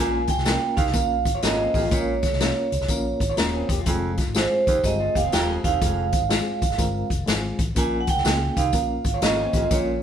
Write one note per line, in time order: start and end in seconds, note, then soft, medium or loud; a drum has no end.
0.00 0.26 A#1 loud
0.00 0.22 A#2 medium
0.00 0.58 G#3 medium
0.00 0.28 A#3 medium
0.00 0.29 C#4 medium
0.00 0.29 F4 medium
0.00 0.58 F4 medium
0.00 0.29 A#4 medium
0.00 0.29 G#5 loud
0.27 0.79 G5 loud
0.27 kick medium
0.27 closed hi-hat medium
0.27 tambourine medium
0.38 0.55 C2 medium
0.38 snare soft
0.45 0.77 A#3 medium
0.45 0.77 C#4 medium
0.45 0.78 F4 medium
0.45 0.78 A#4 medium
0.45 snare medium
0.45 closed hi-hat medium
0.45 tambourine medium
0.77 0.84 C#2 medium
0.77 0.91 D#2 medium
0.77 1.45 F5 medium
0.77 kick medium
0.77 closed hi-hat medium
0.77 tambourine medium
0.86 0.92 C2 medium
0.86 snare soft
0.93 1.26 A#1 medium
0.93 1.26 A#3 medium
0.93 1.26 C#4 medium
0.93 1.26 F4 medium
0.93 1.27 A#4 medium
0.93 kick medium
0.93 closed hi-hat medium
0.93 tambourine medium
1.25 1.38 G#1 medium
1.25 kick medium
1.25 closed hi-hat medium
1.25 tambourine medium
1.35 1.43 F4 medium
1.35 1.43 C#5 medium
1.42 1.66 G#1 medium
1.42 1.68 F2 medium
1.42 1.75 A#3 medium
1.42 1.75 C#4 medium
1.42 1.59 C#4 medium
1.42 1.75 F4 medium
1.42 1.58 A#4 medium
1.42 1.75 A#4 medium
1.42 1.93 D#5 medium
1.42 snare loud
1.42 closed hi-hat medium
1.42 tambourine medium
1.60 1.75 C4 medium
1.60 1.74 G#4 medium
1.74 1.87 A1 medium
1.74 1.88 F2 medium
1.74 1.84 A#3 medium
1.74 1.83 G4 medium
1.74 kick medium
1.74 open hi-hat medium
1.74 tambourine soft
1.84 2.53 G#3 medium
1.84 2.53 F4 medium
1.91 2.21 A#1 medium
1.91 2.17 A#2 medium
1.91 2.23 A#3 medium
1.91 2.24 C#4 medium
1.91 2.24 F4 medium
1.91 2.24 A#4 medium
1.91 2.21 C#5 medium
1.91 kick medium
1.91 closed hi-hat medium
1.91 tambourine medium
2.23 3.65 C#5 medium
2.23 kick medium
2.23 snare soft
2.23 closed hi-hat medium
2.23 tambourine medium
2.33 2.50 C2 medium
2.33 snare soft
2.39 2.72 A#3 medium
2.39 2.72 C#4 medium
2.39 2.73 F4 medium
2.39 2.73 A#4 medium
2.39 snare loud
2.39 closed hi-hat medium
2.39 tambourine medium
2.72 2.78 C#2 medium
2.72 closed hi-hat medium
2.72 tambourine medium
2.81 2.87 C2 medium
2.81 snare soft
2.88 3.12 A#1 medium
2.88 3.21 A#3 medium
2.88 3.21 C#4 medium
2.88 3.21 F4 medium
2.88 3.22 A#4 medium
2.88 kick medium
2.88 closed hi-hat medium
2.88 tambourine medium
3.20 3.33 G#1 medium
3.20 kick medium
3.20 closed hi-hat medium
3.20 tambourine soft
3.30 3.38 F4 medium
3.30 3.38 C#5 medium
3.37 3.61 D#1 medium
3.37 3.69 A#3 medium
3.37 3.70 C#4 medium
3.37 3.53 C#4 medium
3.37 3.70 F4 medium
3.37 3.53 A#4 medium
3.37 3.70 A#4 medium
3.37 snare medium
3.37 closed hi-hat medium
3.37 tambourine medium
3.54 3.69 C4 medium
3.54 3.69 G#4 medium
3.69 3.82 E1 medium
3.69 3.78 A#3 medium
3.69 3.78 G4 medium
3.69 kick medium
3.69 closed hi-hat medium
3.69 tambourine soft
3.79 4.48 G#3 medium
3.79 4.48 F4 medium
3.85 4.16 F1 loud
3.85 4.12 F2 medium
3.85 4.18 G#3 medium
3.85 4.18 C4 medium
3.85 4.19 F4 medium
3.85 4.19 G#4 medium
3.85 kick loud
3.85 closed hi-hat medium
3.85 tambourine medium
4.17 kick medium
4.17 snare soft
4.17 closed hi-hat medium
4.17 tambourine medium
4.27 4.45 G#1 medium
4.34 4.67 G#3 medium
4.34 4.67 C4 medium
4.34 4.68 F4 medium
4.34 4.68 G#4 medium
4.34 4.86 C5 medium
4.34 snare loud
4.34 closed hi-hat medium
4.34 tambourine medium
4.67 4.73 A#1 medium
4.67 4.81 D#2 medium
4.67 kick medium
4.67 closed hi-hat medium
4.67 tambourine medium
4.76 4.82 G#1 medium
4.83 5.07 G1 medium
4.83 5.00 G3 medium
4.83 5.16 G#3 medium
4.83 5.16 C4 medium
4.83 4.99 D#4 medium
4.83 5.16 F4 medium
4.83 5.16 G#4 medium
4.83 5.17 D#5 medium
4.83 kick medium
4.83 closed hi-hat medium
4.83 tambourine medium
5.00 5.15 G#3 medium
5.00 5.15 F4 medium
5.15 5.28 F1 medium
5.15 5.24 A#3 medium
5.15 5.24 G4 medium
5.15 5.34 F5 medium
5.15 kick medium
5.15 closed hi-hat medium
5.15 tambourine medium
5.24 5.33 C4 medium
5.24 5.32 G#4 medium
5.32 5.56 D#1 medium
5.32 5.58 F2 medium
5.32 5.65 G#3 medium
5.32 5.65 C4 medium
5.32 5.65 F4 medium
5.32 5.65 G4 medium
5.32 5.48 A#4 medium
5.32 5.47 G5 loud
5.32 snare loud
5.32 closed hi-hat medium
5.32 tambourine medium
5.49 6.19 C4 medium
5.49 6.18 G#4 medium
5.64 5.77 E1 medium
5.64 5.78 D#2 medium
5.64 7.07 F5 medium
5.64 kick medium
5.64 closed hi-hat medium
5.64 tambourine medium
5.81 6.11 F1 medium
5.81 6.07 F2 medium
5.81 6.13 G#3 medium
5.81 6.13 C4 medium
5.81 6.14 F4 medium
5.81 6.14 G#4 medium
5.81 kick medium
5.81 closed hi-hat medium
5.81 tambourine medium
6.12 kick medium
6.12 closed hi-hat medium
6.12 tambourine medium
6.22 6.40 G#1 medium
6.29 6.62 G#3 medium
6.29 6.62 C4 medium
6.29 6.62 F4 medium
6.29 6.63 G#4 medium
6.29 snare loud
6.29 closed hi-hat medium
6.29 tambourine medium
6.62 6.68 A#1 medium
6.62 kick medium
6.62 closed hi-hat medium
6.62 tambourine medium
6.70 6.76 G#1 medium
6.70 snare soft
6.78 7.02 G1 loud
6.78 7.10 G#3 medium
6.78 7.10 C4 medium
6.78 7.11 F4 medium
6.78 7.11 A#4 medium
6.78 kick medium
6.78 closed hi-hat medium
6.78 tambourine medium
7.10 7.23 F1 medium
7.10 kick medium
7.10 closed hi-hat medium
7.10 tambourine medium
7.26 7.51 G#1 medium
7.26 7.59 G#3 medium
7.26 7.59 C4 medium
7.26 7.60 F4 medium
7.26 7.60 G#4 medium
7.26 snare medium
7.26 closed hi-hat medium
7.26 tambourine medium
7.59 7.72 A1 medium
7.59 kick medium
7.59 closed hi-hat medium
7.59 tambourine soft
7.75 8.06 A#1 loud
7.75 8.02 A#2 medium
7.75 8.08 A#3 medium
7.75 8.08 C#4 medium
7.75 8.08 F4 medium
7.75 8.09 A#4 medium
7.75 8.01 G#5 medium
7.75 kick medium
7.75 closed hi-hat medium
7.75 tambourine medium
8.01 8.09 F#5 medium
8.07 8.59 G5 loud
8.07 kick medium
8.07 closed hi-hat medium
8.07 tambourine medium
8.16 8.23 C2 medium
8.16 snare soft
8.24 8.48 C#2 medium
8.24 8.56 A#3 medium
8.24 8.57 C#4 medium
8.24 8.57 F4 medium
8.24 8.57 G#4 medium
8.24 snare loud
8.24 closed hi-hat medium
8.24 tambourine loud
8.57 8.73 C2 medium
8.57 8.70 D#2 medium
8.57 9.24 F5 medium
8.57 kick medium
8.57 closed hi-hat medium
8.57 tambourine soft
8.73 8.96 A#1 loud
8.73 9.05 A#3 medium
8.73 9.06 C#4 medium
8.73 9.06 F4 medium
8.73 9.06 A#4 medium
8.73 kick medium
8.73 closed hi-hat medium
8.73 tambourine medium
9.04 9.18 G#1 medium
9.04 kick medium
9.04 closed hi-hat medium
9.04 tambourine medium
9.14 9.22 F4 medium
9.14 9.22 C#5 medium
9.21 9.45 G#1 medium
9.21 9.48 F2 medium
9.21 9.54 A#3 medium
9.21 9.54 C#4 medium
9.21 9.38 C#4 medium
9.21 9.54 F4 medium
9.21 9.37 A#4 medium
9.21 9.55 C#5 medium
9.21 9.73 D#5 medium
9.21 snare loud
9.21 closed hi-hat medium
9.21 tambourine medium
9.38 9.54 C4 medium
9.38 9.53 G#4 medium
9.53 9.66 A1 medium
9.53 9.68 F2 medium
9.53 9.62 A#3 medium
9.53 9.62 G4 medium
9.53 kick medium
9.53 closed hi-hat medium
9.53 tambourine medium
9.63 10.03 G#3 medium
9.63 10.03 F4 medium
9.70 10.00 A#1 loud
9.70 9.97 A#2 medium
9.70 10.02 A#3 medium
9.70 10.03 C#4 medium
9.70 10.03 F4 medium
9.70 10.03 A#4 medium
9.70 10.01 C#5 medium
9.70 kick medium
9.70 closed hi-hat medium
9.70 tambourine medium